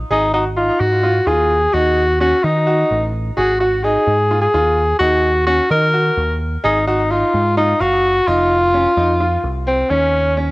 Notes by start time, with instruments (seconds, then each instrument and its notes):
0.10 picked electric bass G#1, tenor saxophone D#4, grand piano G#4
0.34 tenor saxophone D#4, grand piano F#4
0.57 grand piano D#4, tenor saxophone F4
0.80 picked electric bass G#2, tenor saxophone F#4
1.04 grand piano F4
1.27 picked electric bass D#2, grand piano F4, tenor saxophone G#4
1.74 picked electric bass D#2, grand piano D#4, tenor saxophone F#4
2.20 grand piano C#4, tenor saxophone F#4
2.44 picked electric bass D#3, grand piano D#4, tenor saxophone D#4
2.67 grand piano F#4
2.91 picked electric bass A1
3.37 picked electric bass G#1, tenor saxophone F#4, grand piano G#4
3.60 tenor saxophone F#4, grand piano F#4
3.83 grand piano D#4, tenor saxophone G#4
4.07 picked electric bass G#2
4.31 grand piano F4
4.41 tenor saxophone G#4
4.54 picked electric bass D#2, grand piano F4
4.99 picked electric bass D#2, grand piano D#4, tenor saxophone F#4
5.47 grand piano C#4, tenor saxophone F#4
5.70 picked electric bass D#3, grand piano D#4, tenor saxophone A#4
5.94 grand piano F#4
6.17 picked electric bass D#2
6.64 picked electric bass G#1, tenor saxophone D#4, grand piano G#4
6.87 tenor saxophone D#4, grand piano F#4
7.11 grand piano D#4, tenor saxophone F4
7.34 picked electric bass G#2
7.57 tenor saxophone D#4, grand piano F4
7.80 picked electric bass F#1, tenor saxophone F#4, grand piano F5
8.27 picked electric bass F1, grand piano D#4, tenor saxophone F4
8.74 grand piano C#4
8.97 picked electric bass F2, grand piano D#4
9.20 grand piano F4
9.44 picked electric bass C2
9.67 tenor saxophone C4
9.89 picked electric bass D#2, tenor saxophone C#4, grand piano C#4
10.37 grand piano C#4